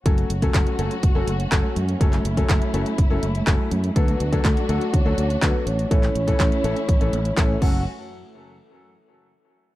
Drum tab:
CC |----------------|----------------|----------------|--------------x-|
HH |xxxxxxxxx-xxx-xx|xxxxxxxxx-xxx-xx|xxxxxxxxx-xxx-xx|xxxxxxxxxxxxx---|
CP |----x-------x---|-x--x-------x---|----x-------x---|-x--x-------x---|
BD |o--oo---o---o---|o--oo---o---o---|o--oo---o---o---|o--oo---o---o-o-|

CC |----------------|
HH |----------------|
CP |----------------|
BD |----------------|